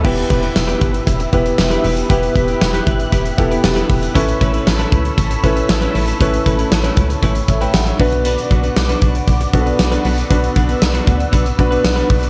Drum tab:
CC |x---------------|----------------|----------------|----------------|
HH |-xxx-xxxxxxx-xox|xxxx-xxxxxxx-xox|xxxx-xxxxxxx-xox|xxxx-xxxxxxx-xox|
TB |----x-------x---|----x-------x---|----x-------x---|----x-------x---|
SD |----o-------o---|----o-------o---|----o-------o---|----o-------o---|
BD |o-o---o-o-o-----|o-o---o-o-o---o-|o-o---o-o-o-----|o-o---o-o-o---o-|

CC |----------------|----------------|
HH |xxxx-xxxxxxx-xox|xxxx-xxxxxxx-xox|
TB |----x-------x---|----x-------x---|
SD |----o-------o---|----o-------o---|
BD |--o---o-o-o-----|o-o---o-o-o---o-|